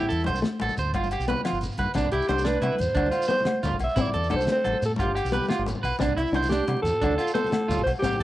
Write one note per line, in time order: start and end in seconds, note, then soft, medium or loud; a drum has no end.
0.00 0.19 C4 medium
0.00 0.29 E4 medium
0.08 0.29 E2 medium
0.08 0.21 A4 medium
0.08 closed hi-hat medium
0.08 low conga soft
0.08 shekere soft
0.18 low conga soft
0.18 shekere soft
0.24 0.41 C2 medium
0.24 0.40 D4 medium
0.24 0.39 C5 medium
0.24 closed hi-hat soft
0.24 muted conga medium
0.24 low agogo medium
0.34 high conga medium
0.34 low conga medium
0.34 shekere medium
0.42 0.69 A3 medium
0.42 snare medium
0.42 closed hi-hat medium
0.42 shekere soft
0.60 0.68 A1 medium
0.60 0.74 A4 medium
0.60 closed hi-hat soft
0.60 muted conga medium
0.60 low conga soft
0.60 low agogo medium
0.69 high conga medium
0.69 low conga medium
0.69 shekere soft
0.77 0.91 D2 medium
0.77 0.91 C5 medium
0.77 closed hi-hat soft
0.77 low conga soft
0.77 shekere medium
0.86 low conga soft
0.94 1.15 G1 medium
0.94 1.07 F4 medium
0.94 kick medium
0.94 closed hi-hat medium
0.94 muted conga medium
0.94 low agogo medium
1.03 high conga medium
1.03 shekere soft
1.11 1.24 G4 medium
1.11 closed hi-hat soft
1.11 low agogo medium
1.11 shekere soft
1.19 1.33 B1 medium
1.19 low conga soft
1.19 shekere medium
1.28 1.41 B3 medium
1.28 1.41 B4 medium
1.28 closed hi-hat medium
1.28 muted conga medium
1.37 high conga medium
1.37 low conga medium
1.45 1.72 F3 medium
1.45 1.58 F4 medium
1.45 snare medium
1.45 closed hi-hat medium
1.45 high conga soft
1.45 low agogo medium
1.52 1.66 G1 medium
1.52 shekere soft
1.61 closed hi-hat soft
1.61 low conga medium
1.61 shekere medium
1.72 shekere soft
1.78 1.85 G2 medium
1.78 1.91 B4 medium
1.78 kick medium
1.78 closed hi-hat soft
1.78 low conga medium
1.78 low agogo medium
1.78 shekere soft
1.94 2.09 C2 medium
1.94 2.21 C4 medium
1.94 2.08 D4 medium
1.94 kick medium
1.94 closed hi-hat medium
1.94 muted conga medium
1.94 low agogo medium
1.94 shekere medium
2.04 high conga medium
2.12 2.19 C2 medium
2.12 2.25 E4 medium
2.12 2.48 G4 medium
2.12 closed hi-hat medium
2.21 low conga soft
2.21 shekere soft
2.29 2.56 C2 medium
2.29 2.42 D4 medium
2.29 2.41 C5 medium
2.29 snare soft
2.29 closed hi-hat soft
2.29 muted conga medium
2.29 low agogo medium
2.38 high conga medium
2.38 low conga medium
2.38 shekere medium
2.45 2.72 A3 medium
2.45 2.57 D4 medium
2.45 2.82 B4 medium
2.45 snare medium
2.45 closed hi-hat medium
2.45 shekere soft
2.62 2.69 C3 medium
2.62 2.74 E4 medium
2.62 closed hi-hat medium
2.62 muted conga medium
2.62 low conga soft
2.62 low agogo medium
2.72 high conga medium
2.72 low conga medium
2.78 2.87 E2 medium
2.78 3.30 C5 medium
2.78 closed hi-hat soft
2.78 shekere medium
2.89 low conga soft
2.95 3.09 D2 medium
2.95 3.08 D4 medium
2.95 kick medium
2.95 closed hi-hat medium
2.95 muted conga medium
2.95 low agogo medium
3.06 high conga medium
3.06 low conga medium
3.11 3.24 F4 medium
3.11 closed hi-hat soft
3.11 low agogo medium
3.11 shekere soft
3.22 shekere medium
3.28 3.42 B3 medium
3.28 3.41 C5 medium
3.28 3.62 C5 medium
3.28 closed hi-hat soft
3.28 muted conga medium
3.28 shekere soft
3.38 high conga medium
3.38 low conga medium
3.38 shekere soft
3.45 3.73 A3 medium
3.45 snare medium
3.45 closed hi-hat medium
3.45 low agogo medium
3.57 low conga soft
3.63 3.70 D2 medium
3.63 3.76 F4 medium
3.63 closed hi-hat soft
3.63 muted conga medium
3.63 shekere medium
3.72 3.79 A1 medium
3.72 high conga medium
3.72 low conga medium
3.79 3.87 B1 medium
3.79 4.03 E5 medium
3.79 kick medium
3.79 closed hi-hat soft
3.79 low conga soft
3.79 low agogo medium
3.79 shekere soft
3.89 shekere soft
3.96 4.04 A1 medium
3.96 4.24 C4 medium
3.96 4.09 E4 medium
3.96 kick medium
3.96 closed hi-hat medium
3.96 muted conga medium
3.96 low agogo medium
3.96 shekere medium
4.01 4.33 D5 medium
4.06 high conga medium
4.06 low conga medium
4.14 4.34 E2 medium
4.14 4.26 A4 medium
4.14 closed hi-hat medium
4.24 low conga soft
4.24 shekere soft
4.30 4.46 C2 medium
4.30 4.44 D4 medium
4.30 4.43 A4 medium
4.30 closed hi-hat soft
4.30 muted conga medium
4.30 low agogo medium
4.36 4.49 C5 medium
4.36 high conga medium
4.36 low conga medium
4.41 shekere medium
4.47 4.75 A3 medium
4.47 snare medium
4.47 closed hi-hat medium
4.47 shekere soft
4.52 4.82 C5 loud
4.64 4.73 A1 medium
4.64 4.77 A4 medium
4.64 closed hi-hat medium
4.64 muted conga medium
4.64 low conga soft
4.64 low agogo medium
4.73 high conga medium
4.73 low conga medium
4.82 4.96 A2 medium
4.82 4.92 A4 medium
4.82 closed hi-hat soft
4.82 shekere medium
4.89 low conga soft
4.96 5.19 G1 medium
4.96 5.11 F4 medium
4.96 kick medium
4.96 closed hi-hat medium
4.96 muted conga medium
4.96 low agogo medium
5.02 5.81 G4 medium
5.02 high conga medium
5.02 low conga medium
5.15 5.28 G4 medium
5.15 closed hi-hat medium
5.15 low agogo medium
5.15 shekere soft
5.25 5.38 B1 medium
5.25 shekere medium
5.32 5.46 B3 medium
5.32 5.45 B4 medium
5.32 closed hi-hat medium
5.32 muted conga medium
5.32 shekere soft
5.41 high conga medium
5.41 low conga medium
5.41 shekere soft
5.49 5.76 A3 medium
5.49 5.62 F4 medium
5.49 snare medium
5.49 closed hi-hat medium
5.49 low agogo medium
5.58 5.72 G1 medium
5.58 low conga soft
5.66 closed hi-hat soft
5.66 muted conga medium
5.66 shekere medium
5.75 high conga medium
5.75 low conga medium
5.83 5.91 B1 medium
5.83 5.95 B4 medium
5.83 kick medium
5.83 closed hi-hat soft
5.83 low conga soft
5.83 low agogo medium
5.83 shekere soft
5.94 shekere soft
5.99 6.14 C2 medium
5.99 6.26 C4 medium
5.99 6.12 D4 medium
5.99 kick medium
5.99 closed hi-hat medium
5.99 muted conga medium
5.99 low agogo medium
5.99 shekere medium
6.08 high conga medium
6.08 low conga medium
6.17 6.24 C2 medium
6.17 6.48 E4 medium
6.17 6.29 E4 medium
6.17 closed hi-hat medium
6.26 low conga soft
6.26 shekere soft
6.32 6.60 C2 medium
6.32 6.47 D4 medium
6.32 6.47 C5 medium
6.32 closed hi-hat soft
6.32 muted conga medium
6.32 low agogo medium
6.43 high conga medium
6.43 low conga medium
6.43 shekere medium
6.50 6.77 A3 medium
6.50 6.64 D4 medium
6.50 6.82 G4 loud
6.50 snare medium
6.50 closed hi-hat medium
6.50 shekere soft
6.68 6.75 C3 medium
6.68 muted clean electric guitar stroke medium
6.68 closed hi-hat soft
6.68 muted conga medium
6.68 low conga soft
6.68 low agogo medium
6.77 high conga medium
6.77 low conga medium
6.82 6.91 E2 medium
6.82 7.30 A4 medium
6.82 closed hi-hat soft
6.82 shekere loud
6.94 low conga soft
7.02 7.15 D2 medium
7.02 7.14 D4 medium
7.02 kick medium
7.02 closed hi-hat medium
7.02 muted conga medium
7.02 low agogo medium
7.12 low conga medium
7.18 7.30 F4 medium
7.18 closed hi-hat soft
7.18 low agogo medium
7.18 shekere soft
7.27 shekere medium
7.34 7.48 B3 medium
7.34 7.82 A4 loud
7.34 7.47 C5 medium
7.34 closed hi-hat soft
7.34 muted conga medium
7.34 shekere soft
7.44 high conga medium
7.44 low conga medium
7.44 shekere soft
7.52 7.79 A3 medium
7.52 snare medium
7.52 closed hi-hat medium
7.52 low agogo medium
7.62 low conga soft
7.68 7.76 D2 medium
7.68 7.81 F4 medium
7.68 closed hi-hat soft
7.68 muted conga medium
7.68 shekere medium
7.77 7.84 A1 medium
7.77 high conga medium
7.77 low conga medium
7.83 7.93 B1 medium
7.83 7.92 C5 medium
7.83 kick medium
7.83 closed hi-hat soft
7.83 low agogo medium
7.88 low conga soft
7.88 shekere soft
7.95 shekere soft
7.99 8.23 C4 medium
7.99 8.23 G4 medium
8.03 8.10 A1 medium
8.03 8.16 G4 medium
8.03 kick medium
8.03 closed hi-hat medium
8.03 muted conga medium
8.03 low agogo medium
8.03 shekere loud
8.12 high conga medium
8.12 low conga medium
8.12 shekere soft
8.20 8.23 E2 medium